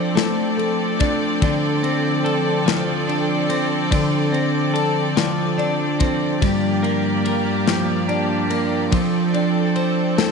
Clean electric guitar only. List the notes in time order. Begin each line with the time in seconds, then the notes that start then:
Already playing: F3 D4 C5
0.15 A3
0.58 A4
0.99 D4
1.42 D3
1.83 C4
2.24 A4
2.66 F3
3.08 D4
3.49 C4
3.91 D3
4.32 C4
4.74 A4
5.17 F3
5.58 D4
5.99 C4
6.42 G2
6.83 A#3
7.25 A#4
7.67 F3
8.09 D4
8.50 A#3
8.92 F3
9.34 D4
9.76 C5
10.18 A3